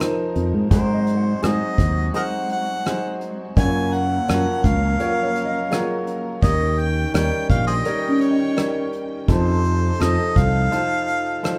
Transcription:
Already playing: F1 F2 F3 D#4 A#4 D#5
0.00 F3 D#4 A#4 C5, cross-stick, closed hi-hat
0.35 F2, closed hi-hat
0.54 G#2
0.70 G#1 G#2 F#3 G#3 C4 D#4 F#4 G#4 A#4 C5, kick, closed hi-hat
0.94 D#5
1.07 closed hi-hat
1.17 F#5
1.42 G#2 F#3 D#4 G#4 C5 D#5, cross-stick, closed hi-hat
1.78 D#2 C5, kick, closed hi-hat
2.14 F#3 D#4 G#4 A#4 C5 D#5 F#5, closed hi-hat
2.49 F#5, closed hi-hat
2.85 F#3 D#4 G#4 C5, cross-stick, closed hi-hat
3.21 closed hi-hat
3.57 F#1 F#2 F#3 A#3 C#4 F4 A#4 C#5 G#5, kick, closed hi-hat
3.93 F#5, closed hi-hat
4.28 F#2 F3 F#3 A#4 C#5, cross-stick, closed hi-hat
4.64 C#2 F5, kick, closed hi-hat
5.00 F#3 F4 A#4 C#5, closed hi-hat
5.23 C#5
5.35 closed hi-hat
5.45 D#5
5.71 F#3 F4 G#4 A#4 C#5, cross-stick, closed hi-hat
6.07 closed hi-hat
6.42 D#2 D#3 C#4 D#4 G4 A#4 C#5 D#5 G5, kick, closed hi-hat
6.78 G5, closed hi-hat
7.14 D#2 G3 D#4 A#4 C#5 G5, cross-stick, closed hi-hat
7.49 A#1 F5, kick, closed hi-hat
7.67 G#4 C5 D#5
7.85 G3 D#4 A#4 C#5, closed hi-hat
8.08 C#4
8.21 C#5, closed hi-hat
8.31 D#5
8.57 G3 D#4 A#4 C#5, cross-stick, closed hi-hat
8.93 closed hi-hat
9.28 F1 F2 F3 D#4 A4 C5, kick, closed hi-hat
9.64 closed hi-hat
10.00 F2 F3 D#4 A4 C5 D#5, cross-stick, closed hi-hat
10.36 C2 F5, kick, closed hi-hat
10.71 F3 D#4 F4 A4 C5, closed hi-hat
11.08 closed hi-hat
11.43 F3 D#4 A4 C5, cross-stick, closed hi-hat

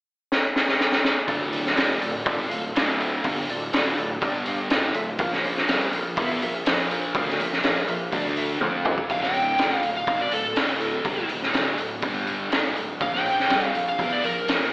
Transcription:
0.32 snare
0.56 snare
0.68 snare
0.80 snare
0.92 snare
1.04 snare
1.27 D1 D2 A2 D3 F4 A4 D5, kick, open hi-hat
1.52 F4 A4 D5, open hi-hat
1.66 snare
1.75 F1 F2 C3 F3 F4 A4 D5, snare, open hi-hat
2.01 D1 D2 A2 F4 A4 D5, open hi-hat
2.25 G#1 G#2 D#3 G#3 F4 A4 D5, kick, open hi-hat
2.49 D1 D2 A2 F4 A4 F5, open hi-hat
2.72 D1 D2 A2 D3 F4 A4 F5, open hi-hat
2.77 snare
2.99 F4 A4 E5, open hi-hat
3.22 G1 G2 D3 G3 F4 A4 F5, kick, open hi-hat
3.48 D1 D2 A2 F4 A4 D5, open hi-hat
3.73 D1 D2 A2 D3 F4 A4 D5, snare, open hi-hat
3.97 D1 D2 A2 F4 A4 D5, open hi-hat
4.21 G1 G2 D3 G3 D4 G4 D5, kick, open hi-hat
4.46 D4 G4 F5, open hi-hat
4.70 G#1 G#2 D#3 G#3 F4 A4 D5, snare, open hi-hat
4.94 D1 D2 A2 F4 A4 E5, open hi-hat
5.18 A#1 A#2 F3 A#3 F4 A#4 F5, kick, open hi-hat
5.32 snare
5.44 F4 A#4 F5, open hi-hat
5.57 snare
5.67 C2 C3 G3 C4 F4 A#4 E5, snare, open hi-hat
5.92 A#1 A#2 F3 F4 A#4 F5, open hi-hat
6.16 E2 E3 B3 E4 F4 A#4 E5, kick, open hi-hat
6.41 A#1 A#2 F3 F4 A#4 E5, open hi-hat
6.66 A#1 A#2 F3 A#3 F4 A#4 C5, snare, open hi-hat
6.91 F4 A#4 C5, open hi-hat
7.14 D2 D3 A3 D4 F4 A#4 F5, kick, open hi-hat
7.29 snare
7.39 A#1 A#2 F3 F4 A#4 E5, open hi-hat
7.53 snare
7.63 A#1 A#2 F3 A#3 F4 A#4 F5, snare, open hi-hat
7.88 A#1 A#2 F3 F4 A#4 E5, open hi-hat
8.12 D2 D3 A3 D4 A4 D5, kick, open hi-hat
8.37 D4 A4 E5, open hi-hat
8.61 F2 F3 C4 F4 C5, high tom
8.85 C4 F4 G4, mid tom
8.98 kick
9.10 D1 D2 A2 D3 F5, kick, open hi-hat
9.23 G5, snare
9.34 open hi-hat
9.58 F1 F2 C3 F3, snare, open hi-hat
9.78 F5
9.83 D1 D2 A2, open hi-hat
9.97 F5
10.07 G#1 G#2 D#3 G#3, kick, open hi-hat
10.21 D5
10.31 D1 D2 A2 A4, open hi-hat
10.56 D1 D2 A2 D3, snare, open hi-hat
10.80 open hi-hat
11.04 G1 G2 D3 G3, kick, open hi-hat
11.29 D1 D2 A2, open hi-hat
11.42 snare
11.53 D1 D2 A2 D3, snare, open hi-hat
11.78 D1 D2 A2, open hi-hat
12.02 G1 G2 D3 G3, kick, open hi-hat
12.27 open hi-hat
12.51 G#1 G#2 D#3 G#3, snare, open hi-hat
12.76 D1 D2 A2, open hi-hat
13.01 A#1 A#2 F3 A#3 F5, kick, open hi-hat
13.14 G5, snare
13.26 open hi-hat
13.39 snare
13.49 C2 C3 G3 C4, snare, open hi-hat
13.65 F5
13.74 A#1 A#2 F3, open hi-hat
13.89 F5
13.98 E2 E3 B3 E4, kick, open hi-hat
14.13 D5
14.23 A#1 A#2 F3 A#4, open hi-hat
14.48 A#1 A#2 F3 A#3, snare, open hi-hat

